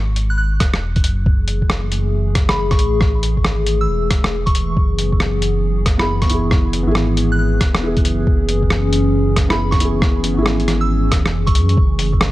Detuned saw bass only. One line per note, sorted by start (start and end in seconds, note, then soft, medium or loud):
0.00 0.62 G#1 loud
0.60 1.03 E1 medium
1.04 1.25 F#1 loud
1.26 2.78 F#1 medium
2.79 3.35 A1 medium
3.37 3.88 G#1 medium
3.89 4.75 E1 medium
4.77 6.29 F#1 loud
6.29 6.86 F#1 medium
6.87 7.63 G#1 loud
7.61 8.04 E1 medium
8.04 8.25 F#1 loud
8.27 9.79 F#1 loud
9.80 10.36 F#1 medium
10.38 11.13 G#1 loud
11.11 11.35 E1 medium
11.33 11.57 F#1 medium
11.55 11.76 F#2 loud
11.77 12.32 F#1 loud